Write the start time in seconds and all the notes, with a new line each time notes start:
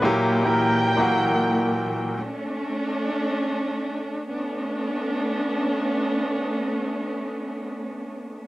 0.02 A#2 E3 F#3 A#3 E4 G4 G5
0.44 A#2 F#3 A#3 E4 A#4
0.97 A#2 F#3 A#3 E4 F#4
2.16 A3 C#4 D4
4.28 A3 B3 C#4 D4